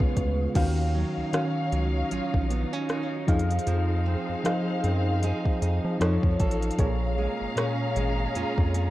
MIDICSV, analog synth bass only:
0, 0, Header, 1, 2, 480
1, 0, Start_track
1, 0, Key_signature, -6, "minor"
1, 0, Tempo, 779221
1, 342, Time_signature, 4, 2, 24, 8
1, 5484, End_track
2, 0, Start_track
2, 0, Title_t, "Analog synth bass"
2, 0, Program_c, 0, 38
2, 1, Note_on_c, 0, 35, 87
2, 81, Note_off_c, 0, 35, 0
2, 103, Note_on_c, 0, 38, 84
2, 293, Note_off_c, 0, 38, 0
2, 342, Note_on_c, 0, 39, 116
2, 643, Note_off_c, 0, 39, 0
2, 722, Note_on_c, 0, 37, 46
2, 762, Note_off_c, 0, 37, 0
2, 1062, Note_on_c, 0, 37, 88
2, 1253, Note_off_c, 0, 37, 0
2, 1304, Note_on_c, 0, 34, 46
2, 1359, Note_off_c, 0, 34, 0
2, 1442, Note_on_c, 0, 34, 90
2, 1632, Note_off_c, 0, 34, 0
2, 2022, Note_on_c, 0, 41, 98
2, 2212, Note_off_c, 0, 41, 0
2, 2262, Note_on_c, 0, 41, 106
2, 2563, Note_off_c, 0, 41, 0
2, 2643, Note_on_c, 0, 42, 46
2, 2683, Note_off_c, 0, 42, 0
2, 2982, Note_on_c, 0, 42, 94
2, 3283, Note_off_c, 0, 42, 0
2, 3463, Note_on_c, 0, 41, 86
2, 3573, Note_off_c, 0, 41, 0
2, 3602, Note_on_c, 0, 53, 92
2, 3682, Note_off_c, 0, 53, 0
2, 3701, Note_on_c, 0, 41, 105
2, 3812, Note_off_c, 0, 41, 0
2, 3841, Note_on_c, 0, 41, 77
2, 3921, Note_off_c, 0, 41, 0
2, 3944, Note_on_c, 0, 33, 91
2, 4134, Note_off_c, 0, 33, 0
2, 4183, Note_on_c, 0, 34, 111
2, 4483, Note_off_c, 0, 34, 0
2, 4563, Note_on_c, 0, 32, 49
2, 4603, Note_off_c, 0, 32, 0
2, 4904, Note_on_c, 0, 32, 93
2, 5094, Note_off_c, 0, 32, 0
2, 5145, Note_on_c, 0, 41, 49
2, 5200, Note_off_c, 0, 41, 0
2, 5283, Note_on_c, 0, 41, 90
2, 5473, Note_off_c, 0, 41, 0
2, 5484, End_track
0, 0, End_of_file